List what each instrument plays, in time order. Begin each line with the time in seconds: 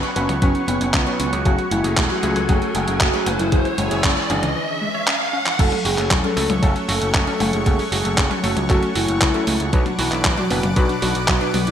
Already playing: electric grand piano F#3 B3 C#4 B4, analog synth pad B4 C#5 F#5 C#6, riser
0.03 closed hi-hat, high tom
0.16 picked electric bass F#1, electric grand piano F#3 B3 C#4 B4, soft synth lead C#4, synth arpeggio sound C#4, closed hi-hat
0.29 picked electric bass C#2, synth arpeggio sound F#3, closed hi-hat, high tom
0.42 picked electric bass F#1, electric grand piano F#3 B3 C#4 B4, synth arpeggio sound F#3, soft synth lead C#4, kick, closed hi-hat
0.55 closed hi-hat
0.67 picked electric bass F#1, electric grand piano F#3 B3 C#4 B4, soft synth lead B3, synth arpeggio sound B3, closed hi-hat
0.81 picked electric bass F#1, synth arpeggio sound C#5, closed hi-hat
0.94 picked electric bass C#2, synth arpeggio sound C#4, kick, clap, closed hi-hat
1.07 electric grand piano F#3 B3 C#4 B4, closed hi-hat
1.20 picked electric bass C#2, synth arpeggio sound C#4, closed hi-hat
1.32 picked electric bass C#2, synth arpeggio sound F#3, closed hi-hat
1.45 picked electric bass F#1, synth arpeggio sound F#3, electric grand piano F#3 A3 C#4 G#4, analog synth pad A3 G#5, soft synth lead F#4, kick, closed hi-hat
1.59 closed hi-hat, high tom
1.71 picked electric bass F#1, synth arpeggio sound G#3, soft synth lead E4, closed hi-hat
1.84 picked electric bass F#1, electric grand piano F#3 A3 C#4 G#4, synth arpeggio sound G#4, closed hi-hat
1.97 picked electric bass E1, synth arpeggio sound A3, kick, clap, closed hi-hat
2.10 soft synth lead F#4, closed hi-hat, high tom
2.23 picked electric bass C#2, electric grand piano F#3 A3 C#4 G#4, synth arpeggio sound A3, closed hi-hat
2.36 picked electric bass C#2, synth arpeggio sound F#3, closed hi-hat, high tom
2.49 picked electric bass F#1, synth arpeggio sound F#3, electric grand piano F#3 A3 C#4 G#4, soft synth lead F#4, kick, closed hi-hat
2.62 closed hi-hat
2.75 picked electric bass F#1, electric grand piano F#3 A3 C#4 G#4, synth arpeggio sound G#3, soft synth lead F#4, closed hi-hat
2.88 picked electric bass F#1, synth arpeggio sound G#4, closed hi-hat
3.00 picked electric bass F#1, synth arpeggio sound A3, soft synth lead F#4, kick, clap, closed hi-hat
3.14 electric grand piano F#3 A3 C#4 G#4, closed hi-hat
3.26 picked electric bass F#1, synth arpeggio sound A3, closed hi-hat, high tom
3.39 picked electric bass F#1, synth arpeggio sound F#3, soft synth lead E4, closed hi-hat
3.52 picked electric bass F#1, synth arpeggio sound E3, electric grand piano E3 G#3 C#4 G#4, analog synth pad G#4 C#5 E5, kick, closed hi-hat
3.65 closed hi-hat, high tom
3.78 picked electric bass F#1, synth arpeggio sound G#3, soft synth lead E4, closed hi-hat
3.91 picked electric bass F#1, electric grand piano E3 G#3 C#4 G#4, synth arpeggio sound C#5, closed hi-hat
4.04 picked electric bass F#1, synth arpeggio sound C#4, kick, clap, closed hi-hat
4.17 closed hi-hat, high tom
4.30 picked electric bass F#1, electric grand piano E3 G#3 C#4 G#4, synth arpeggio sound C#4, soft synth lead D4, closed hi-hat
4.43 picked electric bass C#2, synth arpeggio sound E3, closed hi-hat, high tom
4.56 synth arpeggio sound E3
4.82 synth arpeggio sound G#3
4.94 synth arpeggio sound C#5
5.07 synth arpeggio sound C#4, clap
5.33 synth arpeggio sound C#4
5.46 synth arpeggio sound E3, clap
5.59 picked electric bass F#1, synth arpeggio sound F#3, electric grand piano F#3 A3 C#4 A4, analog synth pad A3 C#5 F#5 C#6, soft synth lead A4, kick, closed hi-hat, crash
5.72 synth arpeggio sound C#4, closed hi-hat, high tom
5.85 picked electric bass F#1, synth arpeggio sound F#4, soft synth lead G#4, open hi-hat
5.98 picked electric bass F#1, electric grand piano F#3 A3 C#4 A4, clap, closed hi-hat
6.11 picked electric bass E1, synth arpeggio sound F#3, kick, clap, closed hi-hat
6.24 synth arpeggio sound C#4, soft synth lead A4, closed hi-hat, high tom
6.36 picked electric bass C#2, electric grand piano F#3 A3 C#4 A4, synth arpeggio sound A3, open hi-hat
6.49 picked electric bass C#2, closed hi-hat, high tom
6.62 picked electric bass F#1, electric grand piano F#3 A3 C#4 A4, synth arpeggio sound F#3, soft synth lead A4, kick, closed hi-hat
6.76 synth arpeggio sound C#4, closed hi-hat
6.88 picked electric bass F#1, electric grand piano F#3 A3 C#4 A4, synth arpeggio sound F#4, soft synth lead A4, open hi-hat
7.01 picked electric bass F#1, closed hi-hat
7.14 picked electric bass F#1, synth arpeggio sound F#3, soft synth lead A4, kick, clap, closed hi-hat
7.27 electric grand piano F#3 A3 C#4 A4, synth arpeggio sound C#4, closed hi-hat
7.40 picked electric bass F#1, synth arpeggio sound A3, open hi-hat, high tom
7.53 picked electric bass F#1, soft synth lead G#4, closed hi-hat
7.66 picked electric bass F#1, electric grand piano F#3 A3 C#4 A4, synth arpeggio sound F#3, kick, closed hi-hat
7.79 synth arpeggio sound C#4, open hi-hat
7.92 picked electric bass F#1, synth arpeggio sound F#4, soft synth lead G#4, open hi-hat
8.05 picked electric bass F#1, electric grand piano F#3 A3 C#4 A4, closed hi-hat
8.18 picked electric bass F#1, synth arpeggio sound F#3, kick, clap, closed hi-hat
8.31 synth arpeggio sound C#4, closed hi-hat, high tom
8.43 picked electric bass F#1, electric grand piano F#3 A3 C#4 A4, synth arpeggio sound A3, soft synth lead F#4, open hi-hat
8.57 picked electric bass C#2, closed hi-hat, high tom
8.69 picked electric bass F#1, electric grand piano F#3 A3 C#4 A4, synth arpeggio sound F#3, soft synth lead F#4, kick, clap, closed hi-hat
8.82 synth arpeggio sound C#4, closed hi-hat
8.95 picked electric bass F#1, electric grand piano F#3 A3 C#4 A4, soft synth lead E4, synth arpeggio sound F#4, open hi-hat
9.08 picked electric bass F#1, closed hi-hat
9.21 picked electric bass C#2, synth arpeggio sound F#3, kick, clap, closed hi-hat
9.34 electric grand piano F#3 A3 C#4 A4, synth arpeggio sound C#4, closed hi-hat
9.47 picked electric bass C#2, synth arpeggio sound A3, open hi-hat
9.60 picked electric bass C#2, closed hi-hat
9.73 picked electric bass B1, electric grand piano B2 F#3 B3 D4 B4, synth arpeggio sound F#3, soft synth lead F#4, analog synth pad B4 D5 D6, kick, closed hi-hat
9.86 synth arpeggio sound D4, closed hi-hat, high tom
9.99 picked electric bass B1, soft synth lead E4, synth arpeggio sound F#4, open hi-hat
10.12 picked electric bass B1, electric grand piano B2 F#3 B3 D4 B4, clap, closed hi-hat
10.25 picked electric bass A1, synth arpeggio sound F#3, kick, clap, closed hi-hat
10.38 synth arpeggio sound D4, soft synth lead F#4, closed hi-hat, high tom
10.50 picked electric bass F#1, electric grand piano B2 F#3 B3 D4 B4, synth arpeggio sound B3, open hi-hat
10.63 picked electric bass F#1, closed hi-hat, high tom
10.76 picked electric bass B1, electric grand piano B2 F#3 B3 D4 B4, synth arpeggio sound F#3, soft synth lead F#4, kick, closed hi-hat
10.89 synth arpeggio sound D4, closed hi-hat
11.02 picked electric bass B1, electric grand piano B2 F#3 B3 D4 B4, soft synth lead F#4, synth arpeggio sound F#4, open hi-hat
11.15 picked electric bass B1, closed hi-hat
11.28 picked electric bass B1, synth arpeggio sound F#3, soft synth lead F#4, kick, clap, closed hi-hat
11.41 electric grand piano B2 F#3 B3 D4 B4, synth arpeggio sound D4, closed hi-hat
11.54 picked electric bass B1, synth arpeggio sound B3, open hi-hat, high tom
11.67 picked electric bass B1, soft synth lead E4, closed hi-hat